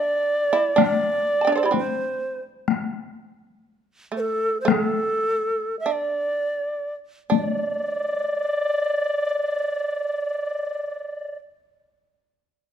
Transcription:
Already playing: D4 D5
0.53 E4
0.76 D4, taiko rim, taiko high
0.83 D5
1.41 G5 A5
1.47 D4 E5
1.52 C5 D5
1.57 A4
1.63 E4 G4
1.71 C4 D4, taiko high
1.78 C5
2.68 taiko rim, taiko high
4.12 A3
4.17 A4 C5
4.61 C5
4.65 A3, taiko rim, taiko high
4.70 G#4
4.82 A4
5.80 E5
5.86 D4
5.92 D5
7.30 D4 D5, taiko high

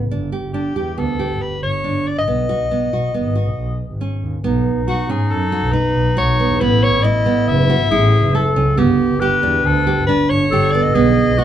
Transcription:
0.11 G1 D4
0.32 G4
0.44 G1
0.53 D4 G4
0.76 E2 G4
0.98 D2 B3 A4
1.19 G4
1.31 G1
1.41 B4
1.63 G1 C#5
1.84 G1 D4
2.07 D5
2.18 G2 D#5
2.28 B1 B3
2.49 F#4
2.61 B1
2.71 B3
2.93 B2 F#4
3.14 G#1 B3
3.35 F#4
3.47 B1
3.57 B1
3.90 G#1
4.01 C#4
4.23 D#2
4.44 B1 B3 D#4
4.76 B1
4.88 F#4
5.09 G#2 C#4 G#4
5.31 F#2 A4
5.52 F#4
5.63 B1
5.72 D#4 B4
5.95 B1
6.17 B1 F#4 C#5
6.40 B3
6.50 E2
6.60 A1 B3 E4 B4
6.83 C#5
6.93 A1
7.03 E4 D#5
7.26 A2 B3
7.47 F#1 E5
7.70 F#4
7.81 A1
7.91 A1 E4 G#4
8.24 F#1
8.34 A4
8.56 C#2 C#4
8.78 G1 B3 G4
9.12 G1
9.20 G4 B4
9.43 E2 D4
9.65 D2 A4
9.87 G4
9.98 G1
10.07 D4 B4
10.29 G1 C#5
10.51 G1 G4 A4
10.71 B3 D5
10.82 A1 D#5
10.94 B1 B3 G#4
11.28 B1
11.38 F#4

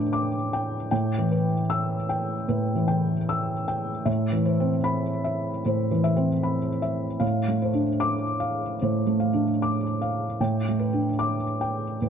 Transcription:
Already playing: A2 A3 D4 B4 G5 D6
0.13 D6
0.53 G5
0.91 A2 G5
1.18 E3
1.31 B4
1.70 E6
2.09 G5
2.49 A2 B4
2.75 E3
2.88 G5
3.29 E6
3.68 G5
4.06 A2 E5
4.32 E3
4.45 C5
4.60 C4
4.84 B5
5.24 E5
5.65 A2 C5
5.91 E3
6.04 E5
6.16 C4
6.43 B5
6.82 E5
7.20 A2 F5
7.48 A3
7.62 C5
7.74 D4
8.00 D6
8.40 F5
8.82 A2 C5
9.06 A3
9.20 F5
9.33 D4
9.62 D6
10.02 F5
10.40 A2 G5
10.68 A3
10.79 B4
10.93 D4
11.19 D6
11.61 G5
12.02 A2 B4

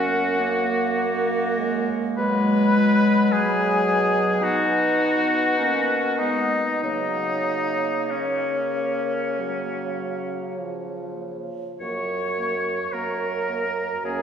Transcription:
Already playing: F#2 A#3 C#4 F#4 F#5
0.40 A#3
0.97 A#3
1.58 G#3
2.18 B2 F#3 G#3 B4 B5
2.77 F#3
3.31 F#3 G#4 G#5
4.42 B3 D#4 F#4 F#5
5.59 A#3 C#4
6.18 G#3 B3 D#4 D#5
6.83 C#3 F#3 A#3 D#4 D#5
8.10 A#3 C#4 C#5
9.39 F#3
10.59 F3
11.80 F#2 A#3 C#5 C#6
12.38 A#3
12.93 F#2 A#3 A#4 A#5
13.49 A#3
14.04 F#2 A#3 C#4 G#4 G#5

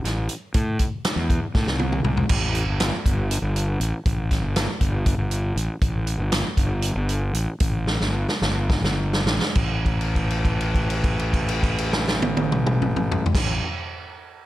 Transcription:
0.04 A1, snare, closed hi-hat
0.29 closed hi-hat
0.54 A2, kick, closed hi-hat
0.79 kick, closed hi-hat
1.04 snare, closed hi-hat
1.16 E2
1.30 kick, closed hi-hat
1.55 A2, kick, snare
1.67 C2, snare
1.79 high tom
1.92 mid tom
2.04 C2, mid tom
2.17 floor tom
2.29 A1, kick, crash
2.55 closed hi-hat
2.66 G1
2.80 snare, closed hi-hat
3.06 G1, kick, closed hi-hat
3.31 closed hi-hat
3.42 G1
3.56 closed hi-hat
3.80 A1, closed hi-hat
4.06 A1, kick, closed hi-hat
4.31 kick, snare, closed hi-hat
4.42 G1
4.56 snare, closed hi-hat
4.81 G1, kick, closed hi-hat
5.06 kick, closed hi-hat
5.18 G1
5.31 closed hi-hat
5.56 A1, closed hi-hat
5.81 A1, kick, closed hi-hat
6.07 closed hi-hat
6.18 G1
6.32 snare, closed hi-hat
6.57 G1, kick, closed hi-hat
6.82 closed hi-hat
6.95 G1
7.09 closed hi-hat
7.34 A1, closed hi-hat
7.60 A1, kick, closed hi-hat
7.87 snare
8.01 G1, snare
8.29 snare
8.42 G1, snare
8.70 kick, snare
8.82 G1, snare
9.13 snare
9.25 A1, snare
9.42 snare
9.55 A1, kick, crash
9.86 kick, crash
10.01 crash
10.15 kick, crash
10.30 crash
10.45 kick, crash
10.61 crash
10.75 kick, crash
10.90 crash
11.04 kick, crash
11.19 crash
11.33 kick, crash
11.49 crash
11.63 kick, crash
11.78 crash
11.93 snare
12.08 snare
12.22 high tom
12.37 high tom
12.52 mid tom
12.67 mid tom
12.82 mid tom
12.96 mid tom
13.12 floor tom
13.26 floor tom
13.35 A1, kick, snare, crash

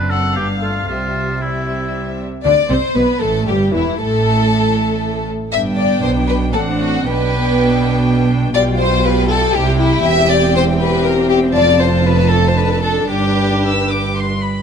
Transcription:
Already playing: F#1 F#2 C4 D4 B4
0.10 A4 F#5
0.35 G1 G2 B3 D4 G4 F5
0.62 A3 F4
0.88 C2 C3 G3 C4 F4 E5
1.40 G3 C4 E4 E5
2.44 D2 D3 D4 D5
2.69 C2 C3 C4 C5
2.95 B1 B2 B3 B4
3.20 A1 A2 A3 A4
3.46 G1 G2 G3 G4
3.73 E1 E2 E3 E4
3.99 A1 A2 A3 A4
5.52 G1 G2 B3 D4 E5 G5
5.78 D5
6.02 B1 B2 C5
6.29 B4
6.53 A1 A2 C4 D4 A4 F#5
6.80 F#4
7.05 B1 B2 B3 D4 B4 G5
8.54 B1 B2 G3 F4 D5 G5
8.79 C5
9.05 B4
9.30 A4
9.54 C2 C3 E4 G4
9.80 E4
10.04 E1 E2 C4 G4 E5
10.30 D5
10.56 C5
10.81 B4
11.05 A#4
11.29 G4
11.54 F1 F2 F4 D5 A5
11.80 C5
12.06 B4
12.30 A4
12.46 C5
12.57 D4 A4 B4
12.84 A4
13.09 G1 G2 G4 B4 D6
13.64 E6
13.90 D6
14.17 C6
14.43 B5

